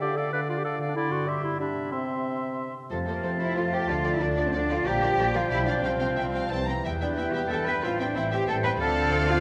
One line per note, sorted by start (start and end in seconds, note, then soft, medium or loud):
0.00 0.77 D3 soft
0.00 0.30 D3 medium
0.00 1.22 A3 soft
0.00 0.86 D4 soft
0.00 0.95 F4 soft
0.00 0.18 G4 medium
0.00 0.17 D5 soft
0.00 0.16 F5 medium
0.17 0.32 A4 medium
0.17 0.33 D5 soft
0.17 0.31 F5 soft
0.32 0.61 D3 medium
0.32 0.40 B4 medium
0.32 0.49 D5 soft
0.32 0.47 F5 soft
0.48 0.59 F4 medium
0.48 0.65 D5 soft
0.48 0.63 F5 soft
0.58 0.64 G4 medium
0.64 0.93 D3 medium
0.64 0.75 A4 medium
0.64 0.80 D5 soft
0.64 0.78 F5 soft
0.78 1.20 D3 soft
0.78 0.96 D5 soft
0.78 0.95 F5 soft
0.83 1.13 C4 soft
0.87 1.24 D4 soft
0.87 0.95 D4 medium
0.92 1.13 E4 medium
0.92 1.27 A4 soft
0.92 1.25 C6 medium
0.96 1.29 D3 medium
0.96 1.30 D5 medium
1.09 1.40 G2 soft
1.09 1.29 F#4 medium
1.14 1.54 C4 soft
1.18 1.49 E4 soft
1.23 1.87 G4 soft
1.27 1.59 G3 soft
1.27 1.43 G4 medium
1.27 1.60 E5 soft
1.27 1.59 C6 soft
1.41 1.85 G2 soft
1.41 1.60 E4 medium
1.46 1.87 B3 soft
1.50 1.82 E4 soft
1.55 1.91 A4 soft
1.60 1.94 G3 medium
1.60 1.94 D4 medium
1.60 1.92 E5 soft
1.60 1.92 B5 soft
1.74 2.84 C3 soft
1.79 3.23 C4 soft
1.83 2.88 E4 soft
1.88 2.90 G4 soft
1.88 2.74 C6 soft
1.92 2.75 C3 soft
1.92 2.75 C4 medium
1.92 2.73 E5 soft
2.90 3.20 F2 soft
2.90 3.90 C3 soft
2.90 2.97 F3 soft
2.90 5.17 F3 soft
2.90 4.82 A3 soft
2.90 4.82 F4 soft
2.90 2.98 A4 soft
2.90 2.97 C5 soft
2.90 3.91 F5 soft
2.90 4.89 A5 soft
3.07 3.14 F3 soft
3.07 3.23 A#3 medium
3.07 3.14 A4 soft
3.07 4.87 A4 soft
3.07 3.23 A#4 soft
3.07 3.14 C5 soft
3.23 3.53 F2 soft
3.23 3.30 F3 soft
3.23 3.90 C4 soft
3.23 3.40 C4 medium
3.23 3.30 A4 soft
3.23 3.30 C5 soft
3.39 3.47 F3 soft
3.39 3.56 E4 medium
3.39 3.72 F4 soft
3.39 3.47 A4 soft
3.39 3.46 C5 soft
3.39 3.57 E5 medium
3.56 3.85 F2 medium
3.56 3.63 F3 soft
3.56 3.84 E4 soft
3.56 3.73 F4 medium
3.56 3.63 A4 soft
3.56 3.63 C5 soft
3.56 3.73 F5 medium
3.72 3.79 F3 soft
3.72 4.04 F4 soft
3.72 3.89 G4 medium
3.72 3.80 A4 soft
3.72 3.79 C5 soft
3.72 3.89 G5 medium
3.89 4.17 D2 soft
3.89 4.86 D3 soft
3.89 4.87 D3 soft
3.89 3.95 F3 soft
3.89 4.13 F4 medium
3.89 3.95 A4 soft
3.89 3.95 D5 soft
3.89 5.83 D5 soft
3.89 4.13 F5 medium
4.04 4.12 F3 soft
4.04 5.01 F4 soft
4.04 4.11 A4 soft
4.04 4.11 D5 soft
4.14 4.22 E4 medium
4.14 4.22 E5 medium
4.20 4.50 D2 medium
4.20 4.28 F3 soft
4.20 4.87 A3 soft
4.20 4.46 D4 medium
4.20 4.28 A4 soft
4.20 4.27 D5 soft
4.20 4.46 D5 medium
4.37 4.44 F3 soft
4.37 4.69 D4 soft
4.37 4.44 A4 soft
4.37 4.43 D5 soft
4.46 4.54 C4 medium
4.46 4.54 C5 medium
4.53 4.82 D2 medium
4.53 4.60 F3 soft
4.53 4.81 C4 soft
4.53 4.70 D4 medium
4.53 4.60 A4 soft
4.53 4.60 D5 soft
4.53 4.70 D5 medium
4.70 4.77 F3 soft
4.70 5.33 D4 soft
4.70 4.87 F4 medium
4.70 4.77 A4 soft
4.70 4.76 D5 soft
4.70 4.86 F5 medium
4.86 5.15 A#1 medium
4.86 5.52 A#2 medium
4.86 4.93 F3 soft
4.86 6.53 F3 medium
4.86 5.47 G3 medium
4.86 5.47 F4 medium
4.86 5.35 G4 medium
4.86 4.93 A#4 medium
4.86 4.92 D5 medium
4.86 5.35 G5 medium
4.86 6.69 G5 medium
5.02 5.09 F3 soft
5.02 5.66 F4 soft
5.02 5.09 A#4 soft
5.02 5.09 D5 soft
5.18 5.47 A#1 medium
5.18 6.53 F3 soft
5.18 5.25 F3 medium
5.18 5.25 A#4 soft
5.18 5.25 D5 soft
5.34 5.41 F3 soft
5.34 5.85 D4 soft
5.34 5.51 F4 medium
5.34 5.41 A#4 soft
5.34 5.40 D5 soft
5.34 5.51 F5 medium
5.50 5.80 B1 medium
5.50 5.85 B2 medium
5.50 5.83 G3 medium
5.50 5.58 G3 soft
5.50 5.67 E4 medium
5.50 5.83 F4 medium
5.50 5.58 D5 soft
5.50 5.66 E5 medium
5.50 5.57 F5 soft
5.67 5.74 G3 soft
5.67 5.83 D4 medium
5.67 5.99 F4 soft
5.67 6.68 G4 soft
5.67 5.84 D5 medium
5.67 5.73 D5 soft
5.67 5.73 F5 soft
5.84 6.14 C2 medium
5.84 6.50 C3 soft
5.84 6.50 G3 soft
5.84 6.68 C4 medium
5.84 5.91 C4 soft
5.84 6.50 F4 soft
5.84 6.69 C5 medium
5.84 5.91 F5 soft
5.84 6.53 F5 soft
5.84 5.91 G5 soft
6.00 6.08 C4 soft
6.00 6.53 F4 soft
6.00 6.08 F5 soft
6.00 6.08 G5 soft
6.17 6.48 C2 soft
6.17 8.82 G3 soft
6.17 6.25 C4 soft
6.17 6.24 E5 medium
6.17 6.25 G5 soft
6.34 6.87 C4 soft
6.34 6.42 C4 soft
6.34 6.51 F5 medium
6.34 6.42 G5 soft
6.51 6.81 C2 soft
6.51 6.86 C3 soft
6.51 7.84 E3 soft
6.51 6.68 G3 soft
6.51 6.59 C4 soft
6.51 6.68 E4 soft
6.51 6.68 C5 soft
6.51 6.59 G5 soft
6.51 6.68 A5 medium
6.68 6.75 C4 soft
6.68 7.33 E4 soft
6.68 7.00 G4 soft
6.68 6.75 G5 soft
6.68 6.85 A#5 soft
6.85 7.14 E2 soft
6.85 7.85 E3 soft
6.85 7.16 G3 soft
6.85 6.92 B3 soft
6.85 7.16 E4 soft
6.85 7.86 B4 soft
6.85 6.92 E5 soft
6.85 6.92 G5 soft
6.85 8.77 G5 soft
7.01 7.08 B3 soft
7.01 7.17 D4 medium
7.01 8.82 G4 soft
7.01 7.17 D5 soft
7.01 7.08 E5 soft
7.01 7.08 G5 soft
7.18 7.47 E2 soft
7.18 7.82 G3 soft
7.18 7.85 B3 soft
7.18 7.25 B3 soft
7.18 7.50 E4 soft
7.18 7.35 E4 medium
7.18 7.24 E5 soft
7.18 7.35 E5 soft
7.18 7.25 G5 soft
7.34 7.42 B3 soft
7.34 7.66 E4 soft
7.34 7.51 G4 medium
7.34 7.40 E5 soft
7.34 7.51 G5 medium
7.34 7.42 G5 soft
7.50 7.80 E2 soft
7.50 7.57 B3 soft
7.50 7.79 D4 soft
7.50 7.84 D4 soft
7.50 7.67 A4 medium
7.50 7.57 E5 soft
7.50 7.58 G5 soft
7.50 7.57 A5 medium
7.67 7.74 B3 soft
7.67 7.99 E4 soft
7.67 7.84 B4 medium
7.67 7.74 E5 soft
7.67 7.74 G5 soft
7.67 7.83 B5 medium
7.83 8.12 A1 soft
7.83 8.82 A2 soft
7.83 8.79 E3 soft
7.83 8.15 G3 soft
7.83 7.90 C4 soft
7.83 8.15 C4 soft
7.83 8.00 F4 medium
7.83 8.80 C5 soft
7.83 7.90 E5 soft
7.83 8.00 F5 medium
7.83 7.91 G5 soft
8.00 8.06 C4 soft
8.00 8.16 D4 medium
8.00 8.82 E4 soft
8.00 8.16 D5 medium
8.00 8.06 E5 soft
8.00 8.07 G5 soft
8.15 8.45 A1 medium
8.15 8.82 E3 soft
8.15 8.48 G3 medium
8.15 8.22 C4 soft
8.15 8.48 C4 medium
8.15 8.33 E4 medium
8.15 8.22 E5 soft
8.15 8.32 E5 medium
8.15 8.23 G5 soft
8.31 8.64 C4 soft
8.31 8.39 C4 soft
8.31 8.48 G4 medium
8.31 8.38 E5 soft
8.31 8.48 G5 medium
8.31 8.39 G5 soft
8.47 8.77 A1 medium
8.47 8.80 G3 medium
8.47 8.79 C4 medium
8.47 8.55 C4 soft
8.47 8.55 A4 medium
8.47 8.54 E5 soft
8.47 8.55 G5 soft
8.47 8.54 A5 medium
8.64 8.71 C4 soft
8.64 9.28 C4 soft
8.64 8.71 B4 medium
8.64 8.71 E5 soft
8.64 8.71 G5 soft
8.64 8.71 B5 medium
8.79 9.40 D2 medium
8.79 9.40 D3 medium
8.79 9.40 F3 medium
8.79 9.40 C4 medium
8.79 9.28 A4 medium
8.79 9.40 C5 medium
8.79 9.40 D5 medium
8.79 9.40 F5 medium
8.79 9.28 A5 medium
8.97 9.40 D4 medium
9.13 9.40 A3 medium
9.29 9.40 C4 medium
9.29 9.40 F4 medium
9.29 9.36 F5 medium